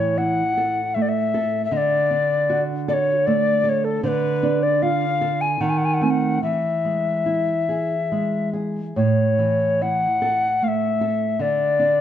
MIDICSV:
0, 0, Header, 1, 3, 480
1, 0, Start_track
1, 0, Key_signature, 3, "major"
1, 0, Tempo, 775194
1, 1060, Time_signature, 3, 2, 24, 8
1, 3466, Tempo, 843882
1, 5866, Tempo, 792602
1, 7194, End_track
2, 0, Start_track
2, 0, Title_t, "Recorder"
2, 0, Program_c, 0, 74
2, 0, Note_on_c, 0, 73, 74
2, 110, Note_on_c, 0, 78, 93
2, 120, Note_off_c, 0, 73, 0
2, 585, Note_on_c, 0, 76, 63
2, 594, Note_off_c, 0, 78, 0
2, 631, Note_on_c, 0, 74, 58
2, 641, Note_off_c, 0, 76, 0
2, 674, Note_on_c, 0, 76, 71
2, 683, Note_off_c, 0, 74, 0
2, 1019, Note_off_c, 0, 76, 0
2, 1023, Note_on_c, 0, 76, 67
2, 1069, Note_on_c, 0, 75, 82
2, 1079, Note_off_c, 0, 76, 0
2, 1095, Note_on_c, 0, 74, 89
2, 1102, Note_off_c, 0, 75, 0
2, 1626, Note_off_c, 0, 74, 0
2, 1788, Note_on_c, 0, 74, 68
2, 1816, Note_on_c, 0, 73, 74
2, 1822, Note_off_c, 0, 74, 0
2, 2021, Note_on_c, 0, 74, 85
2, 2030, Note_off_c, 0, 73, 0
2, 2261, Note_off_c, 0, 74, 0
2, 2261, Note_on_c, 0, 74, 73
2, 2285, Note_on_c, 0, 73, 79
2, 2291, Note_off_c, 0, 74, 0
2, 2381, Note_on_c, 0, 69, 87
2, 2390, Note_off_c, 0, 73, 0
2, 2496, Note_off_c, 0, 69, 0
2, 2503, Note_on_c, 0, 72, 85
2, 2527, Note_on_c, 0, 71, 93
2, 2533, Note_off_c, 0, 72, 0
2, 2866, Note_on_c, 0, 74, 81
2, 2875, Note_off_c, 0, 71, 0
2, 2987, Note_on_c, 0, 77, 102
2, 2996, Note_off_c, 0, 74, 0
2, 3351, Note_on_c, 0, 80, 85
2, 3360, Note_off_c, 0, 77, 0
2, 3474, Note_on_c, 0, 78, 70
2, 3482, Note_off_c, 0, 80, 0
2, 3520, Note_on_c, 0, 80, 64
2, 3528, Note_off_c, 0, 78, 0
2, 3568, Note_on_c, 0, 78, 69
2, 3577, Note_off_c, 0, 80, 0
2, 3609, Note_on_c, 0, 80, 71
2, 3617, Note_off_c, 0, 78, 0
2, 3660, Note_on_c, 0, 78, 64
2, 3668, Note_off_c, 0, 80, 0
2, 3710, Note_on_c, 0, 80, 59
2, 3719, Note_off_c, 0, 78, 0
2, 3754, Note_on_c, 0, 78, 70
2, 3762, Note_off_c, 0, 80, 0
2, 3938, Note_off_c, 0, 78, 0
2, 3942, Note_on_c, 0, 76, 70
2, 5116, Note_off_c, 0, 76, 0
2, 5380, Note_on_c, 0, 73, 66
2, 5868, Note_on_c, 0, 78, 88
2, 5877, Note_off_c, 0, 73, 0
2, 6364, Note_on_c, 0, 77, 67
2, 6373, Note_off_c, 0, 78, 0
2, 6389, Note_on_c, 0, 76, 73
2, 6395, Note_off_c, 0, 77, 0
2, 6833, Note_on_c, 0, 74, 76
2, 6842, Note_off_c, 0, 76, 0
2, 7194, Note_off_c, 0, 74, 0
2, 7194, End_track
3, 0, Start_track
3, 0, Title_t, "Nylon-string guitar"
3, 0, Program_c, 1, 24
3, 0, Note_on_c, 1, 45, 56
3, 0, Note_on_c, 1, 52, 45
3, 111, Note_on_c, 1, 64, 44
3, 259, Note_off_c, 1, 52, 0
3, 355, Note_on_c, 1, 69, 50
3, 496, Note_off_c, 1, 64, 0
3, 595, Note_on_c, 1, 57, 53
3, 731, Note_off_c, 1, 69, 0
3, 831, Note_on_c, 1, 69, 54
3, 968, Note_off_c, 1, 57, 0
3, 1029, Note_off_c, 1, 45, 0
3, 1061, Note_on_c, 1, 50, 66
3, 1063, Note_off_c, 1, 69, 0
3, 1304, Note_on_c, 1, 62, 50
3, 1545, Note_on_c, 1, 66, 59
3, 1684, Note_off_c, 1, 62, 0
3, 1785, Note_on_c, 1, 69, 61
3, 1926, Note_off_c, 1, 66, 0
3, 2027, Note_on_c, 1, 57, 64
3, 2165, Note_off_c, 1, 69, 0
3, 2252, Note_on_c, 1, 69, 58
3, 2402, Note_off_c, 1, 57, 0
3, 2468, Note_off_c, 1, 50, 0
3, 2491, Note_off_c, 1, 69, 0
3, 2498, Note_on_c, 1, 50, 72
3, 2742, Note_on_c, 1, 62, 50
3, 2986, Note_on_c, 1, 65, 58
3, 3126, Note_off_c, 1, 62, 0
3, 3228, Note_on_c, 1, 69, 61
3, 3374, Note_off_c, 1, 65, 0
3, 3445, Note_off_c, 1, 50, 0
3, 3471, Note_off_c, 1, 69, 0
3, 3471, Note_on_c, 1, 51, 70
3, 3701, Note_on_c, 1, 57, 46
3, 3703, Note_on_c, 1, 60, 48
3, 3914, Note_off_c, 1, 57, 0
3, 3914, Note_off_c, 1, 60, 0
3, 3923, Note_off_c, 1, 51, 0
3, 3937, Note_on_c, 1, 52, 53
3, 4177, Note_on_c, 1, 56, 39
3, 4410, Note_on_c, 1, 64, 40
3, 4561, Note_off_c, 1, 56, 0
3, 4655, Note_on_c, 1, 68, 40
3, 4796, Note_off_c, 1, 64, 0
3, 4900, Note_on_c, 1, 56, 41
3, 5039, Note_off_c, 1, 68, 0
3, 5136, Note_on_c, 1, 68, 38
3, 5283, Note_off_c, 1, 56, 0
3, 5355, Note_off_c, 1, 52, 0
3, 5377, Note_off_c, 1, 68, 0
3, 5380, Note_on_c, 1, 45, 51
3, 5621, Note_on_c, 1, 52, 43
3, 5865, Note_on_c, 1, 64, 42
3, 6015, Note_off_c, 1, 52, 0
3, 6108, Note_on_c, 1, 69, 46
3, 6256, Note_off_c, 1, 64, 0
3, 6353, Note_on_c, 1, 57, 45
3, 6494, Note_off_c, 1, 69, 0
3, 6589, Note_on_c, 1, 69, 50
3, 6733, Note_off_c, 1, 57, 0
3, 6805, Note_off_c, 1, 45, 0
3, 6821, Note_on_c, 1, 50, 62
3, 6827, Note_off_c, 1, 69, 0
3, 7063, Note_on_c, 1, 62, 46
3, 7194, Note_off_c, 1, 50, 0
3, 7194, Note_off_c, 1, 62, 0
3, 7194, End_track
0, 0, End_of_file